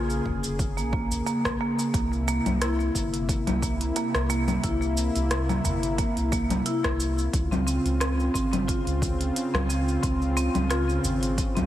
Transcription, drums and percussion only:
0.10 shaker
0.25 kick, udu
0.44 shaker
0.59 kick, shaker
0.78 shaker
0.93 kick
1.10 udu, shaker
1.27 shaker
1.45 kick, cross-stick, shaker
1.79 shaker
1.94 kick, closed hi-hat, shaker
2.13 shaker
2.28 shaker
2.46 closed hi-hat, low conga, shaker
2.62 cross-stick, closed hi-hat, shaker
2.80 shaker
2.95 kick, shaker
3.14 closed hi-hat, shaker
3.29 kick, closed hi-hat, shaker
3.47 closed hi-hat, low conga, shaker
3.62 kick, shaker
3.81 closed hi-hat, shaker
3.96 closed hi-hat, shaker
4.15 cross-stick, shaker
4.30 shaker
4.48 low conga, shaker
4.64 kick, closed hi-hat, shaker
4.82 shaker
4.97 shaker
5.16 closed hi-hat, shaker
5.31 cross-stick, closed hi-hat, shaker
5.49 low conga, shaker
5.65 udu, shaker
5.83 closed hi-hat, shaker
5.98 kick, closed hi-hat, shaker
6.17 closed hi-hat, shaker
6.32 kick, shaker
6.50 closed hi-hat, low conga, shaker
6.66 closed hi-hat, shaker
6.84 kick, cross-stick, closed hi-hat, shaker
7.00 shaker
7.18 shaker
7.33 kick, closed hi-hat, shaker
7.52 low conga, shaker
7.68 shaker
7.86 closed hi-hat, shaker
8.01 cross-stick, closed hi-hat, shaker
8.20 shaker
8.35 kick, shaker
8.53 closed hi-hat, low conga, shaker
8.68 kick, closed hi-hat, shaker
8.87 closed hi-hat, shaker
9.02 kick, shaker
9.21 closed hi-hat, shaker
9.36 closed hi-hat, shaker
9.55 cross-stick, low conga, shaker
9.70 shaker
9.88 shaker
10.03 kick, closed hi-hat, shaker
10.22 shaker
10.37 shaker
10.55 closed hi-hat, low conga, shaker
10.71 cross-stick, closed hi-hat, shaker
10.89 shaker
11.03 udu, shaker
11.23 closed hi-hat, shaker
11.38 kick, closed hi-hat, shaker
11.57 closed hi-hat, low conga, shaker

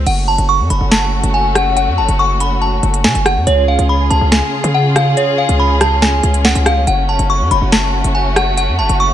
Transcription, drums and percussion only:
0.06 closed hi-hat, crash
0.38 closed hi-hat
0.70 closed hi-hat
0.92 snare, closed hi-hat
1.24 closed hi-hat
1.55 cross-stick, closed hi-hat
1.77 closed hi-hat
2.09 closed hi-hat
2.40 closed hi-hat
2.83 closed hi-hat
2.94 closed hi-hat
3.04 snare
3.15 closed hi-hat
3.26 cross-stick, closed hi-hat
3.47 closed hi-hat
3.79 closed hi-hat
4.11 closed hi-hat
4.32 snare, closed hi-hat
4.64 closed hi-hat
4.96 cross-stick, closed hi-hat
5.17 closed hi-hat
5.49 closed hi-hat
5.81 cross-stick, closed hi-hat
6.02 snare
6.23 closed hi-hat
6.34 closed hi-hat
6.45 snare
6.55 closed hi-hat
6.66 cross-stick, closed hi-hat
6.87 closed hi-hat
7.19 closed hi-hat
7.51 closed hi-hat
7.72 snare, closed hi-hat
8.04 closed hi-hat
8.36 cross-stick, closed hi-hat
8.57 closed hi-hat
8.89 closed hi-hat

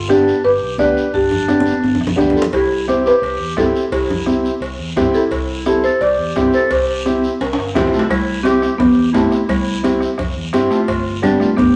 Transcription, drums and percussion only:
0.09 bombo rim, high conga, short guiro
0.28 short guiro
0.44 high conga, long guiro
0.78 bombo low, bombo rim, high conga, short guiro
0.97 short guiro
1.14 bombo low, high conga, long guiro
1.31 low conga
1.48 bombo rim, high conga, short guiro
1.60 high conga
1.66 short guiro
1.72 high conga
1.84 high conga, long guiro
1.95 low conga
2.01 bombo rim
2.07 low conga
2.18 bombo low, bombo rim, low conga, short guiro
2.30 low conga
2.37 short guiro
2.42 low conga
2.53 bombo low, cowbell, high conga, long guiro
2.88 bombo rim, high conga, short guiro
3.06 short guiro
3.23 cowbell, high conga, long guiro
3.57 bombo low, bombo rim, high conga, low timbale, short guiro
3.76 short guiro
3.92 bombo low, cowbell, high conga, long guiro
4.10 low conga
4.26 bombo rim, high conga, short guiro
4.45 short guiro
4.62 cowbell, high conga, long guiro
4.97 bombo low, bombo rim, high conga, low conga, low timbale, short guiro
5.14 short guiro
5.31 bombo low, cowbell, long guiro
5.66 bombo rim, high conga, short guiro
5.84 short guiro
6.01 cowbell, high conga, long guiro
6.36 bombo low, bombo rim, high conga, low timbale, short guiro
6.53 short guiro
6.71 bombo low, cowbell, high conga, long guiro
7.06 bombo rim, high conga, short guiro
7.24 short guiro
7.41 cowbell, high conga, high timbale, long guiro
7.53 high timbale
7.59 bombo rim
7.75 bombo low, bombo rim, high conga, low conga, low timbale, short guiro
7.87 low timbale
7.93 short guiro
7.99 low timbale
8.10 bombo low, bombo rim, cowbell, high conga, long guiro
8.45 bombo rim, cowbell, high conga, short guiro
8.62 bombo rim, short guiro
8.80 bombo low, bombo rim, cowbell, high conga, low conga, long guiro
9.14 bombo low, bombo rim, cowbell, high conga, low timbale, short guiro
9.32 bombo rim, short guiro
9.49 bombo low, bombo rim, cowbell, high conga, long guiro
9.84 bombo rim, cowbell, high conga, short guiro
10.01 bombo rim, short guiro
10.18 bombo low, bombo rim, cowbell, high conga, low conga, long guiro
10.53 bombo rim, cowbell, high conga, short guiro
10.71 bombo rim, short guiro
10.88 bombo low, bombo rim, cowbell, high conga, long guiro
11.23 bombo rim, cowbell, high conga, short guiro
11.40 bombo rim, short guiro
11.57 bombo low, bombo rim, cowbell, high conga, low conga, long guiro

